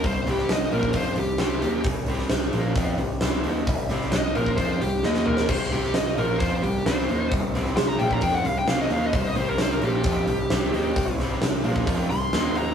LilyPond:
<<
  \new Staff \with { instrumentName = "Lead electric guitar" } { \time 4/4 \key c \minor \tempo 4 = 132 c''8 g'8 ees''8 bes'8 c''8 g'8 g'4 | r1 | r4 ees''8 bes'8 c''8 g'8 ees''8 bes'8 | c''8 g'8 ees''8 bes'8 c''8 g'8 c''4 |
r4 c'''16 bes''16 g''16 bes''16 g''16 fis''16 f''16 g''16 f''16 ees''16 f''16 ees''16 | c''16 ees''16 c''16 bes'16 c''16 bes'16 g'2~ g'8~ | g'8 r2 c'''4 bes''8 | }
  \new Staff \with { instrumentName = "Overdriven electric guitar" } { \clef bass \time 4/4 \key c \minor <c g>8 <c g c'>8 <c g>8 <bes, f bes>8 <f c' f'>8 <c g>8 <c g c'>8 <ees bes ees'>8 | <c g>8 <c g c'>8 <c g>8 <bes, f bes>8 <f c' f'>8 <c g>8 <c g c'>8 <ees bes ees'>8 | <c g>8 <c g c'>8 <c g>8 <bes, f bes>8 <f c' f'>8 <c g>8 <ees bes ees'>4 | <c g>8 <c g c'>8 <c g>8 <bes, f bes>8 <f c' f'>8 <c g>8 <c g c'>8 <ees bes ees'>8 |
<c g>8 <c g c'>8 <c g>8 <bes, f bes>8 <f c' f'>8 <c g>8 <c g c'>8 <ees bes ees'>8 | <c g>8 <c g c'>8 <c g>8 <bes, f bes>8 <f c' f'>8 <c g>8 <c g c'>8 <ees bes ees'>8 | <c g>8 <c g c'>8 <c g>8 <bes, f bes>8 <f c' f'>8 <c g>8 <ees bes ees'>4 | }
  \new Staff \with { instrumentName = "Picked electric bass" } { \clef bass \time 4/4 \key c \minor c,8 c,8 c,8 bes,,8 f,8 c,8 c,8 ees,8 | c,8 c,8 c,8 bes,,8 f,8 c,8 c,8 ees,8 | c,8 c,8 c,8 bes,,8 f,8 c,8 ees,4 | c,8 c,8 c,8 bes,,8 f,8 c,8 c,8 ees,8 |
c,8 c,8 c,8 bes,,8 f,8 c,8 c,8 ees,8 | c,8 c,8 c,8 bes,,8 f,8 c,8 c,8 ees,8 | c,8 c,8 c,8 bes,,8 f,8 c,8 ees,4 | }
  \new DrumStaff \with { instrumentName = "Drums" } \drummode { \time 4/4 <hho bd>8 <hho sn>16 sn16 <hho sn>8 hho16 bd16 <hho bd>8 hho8 <hho sn>8 hho8 | <hho bd>8 hho16 sn16 <hho sn>8 hho8 <hho bd>8 hho8 <hho sn>8 hho8 | <hho bd>8 <hho sn>16 sn16 <hho sn>8 hho16 bd16 <hho bd>8 hho8 sn16 sn16 toml16 sn16 | <cymc bd>8 hho16 sn16 <hho sn>8 hho8 <hho bd>8 hho8 <hho sn>8 hho8 |
<hho bd>8 <hho sn>16 sn16 <hho sn>8 hho16 bd16 <hho bd>8 hho8 <hho sn>8 hho8 | <hho bd>8 hho8 <hho sn>8 hho8 <hho bd>8 hho8 <hho sn>8 hho8 | <hho bd>8 <hho sn>8 <hho sn>8 hho16 bd16 <hho bd>8 hho8 <hho sn>8 hho8 | }
>>